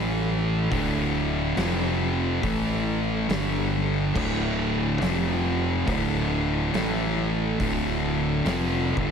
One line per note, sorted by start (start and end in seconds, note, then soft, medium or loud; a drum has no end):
0.00 0.67 A1 medium
0.00 0.69 A2 medium
0.00 0.70 E3 loud
0.00 0.70 A3 loud
0.00 1.55 A3 medium
0.00 1.55 E4 medium
0.00 0.70 A4 medium
0.70 1.53 D1 medium
0.70 1.55 D2 loud
0.70 1.56 A2 loud
0.70 1.55 D3 medium
0.70 1.56 D3 loud
0.70 kick loud
0.70 open hi-hat medium
1.56 2.39 F1 medium
1.56 2.42 F2 medium
1.56 2.42 C3 medium
1.56 2.42 F3 loud
1.56 2.42 F3 medium
1.56 2.43 C4 medium
1.56 2.43 G4 medium
1.56 snare loud
1.56 open hi-hat medium
2.42 3.25 A1 loud
2.42 3.27 A2 medium
2.42 3.28 E3 medium
2.42 3.28 A3 loud
2.42 3.29 A3 medium
2.42 3.29 E4 medium
2.42 4.14 A4 medium
2.42 kick loud
2.42 open hi-hat medium
3.28 4.11 G1 medium
3.28 4.13 G2 medium
3.28 4.14 D3 loud
3.28 4.14 G3 loud
3.28 4.15 G3 medium
3.28 4.15 D4 medium
3.28 snare loud
3.28 open hi-hat medium
4.14 4.97 D1 medium
4.14 5.00 D2 medium
4.14 5.00 A2 loud
4.14 5.00 D3 medium
4.14 5.00 D3 loud
4.14 5.01 A3 medium
4.14 5.00 E4 medium
4.14 kick loud
4.14 crash loud
5.00 5.83 F1 loud
5.00 5.86 F2 medium
5.00 5.86 C3 loud
5.00 5.86 F3 medium
5.00 5.86 F3 loud
5.00 5.87 C4 medium
5.00 5.87 G4 medium
5.00 snare loud
5.00 open hi-hat medium
5.86 6.69 D1 medium
5.86 6.71 D2 medium
5.86 6.70 A2 medium
5.86 6.72 D3 medium
5.86 7.58 A3 medium
5.86 7.57 E4 medium
5.86 kick loud
5.86 open hi-hat medium
6.72 7.55 A1 loud
6.72 7.57 A2 loud
6.72 7.58 E3 medium
6.72 7.58 A3 loud
6.72 9.11 A4 medium
6.72 snare loud
6.72 open hi-hat medium
7.59 8.41 D1 loud
7.59 8.44 D2 medium
7.59 8.44 A2 loud
7.59 8.44 D3 loud
7.59 9.11 D4 medium
7.59 9.11 E5 medium
7.59 kick loud
7.59 open hi-hat medium
8.45 8.93 F1 loud
8.45 8.95 F2 loud
8.45 8.95 C3 loud
8.45 8.95 F3 loud
8.45 snare loud
8.45 open hi-hat medium
8.96 9.11 G1 loud
8.96 9.11 G2 loud
8.96 9.11 D3 loud
8.96 kick loud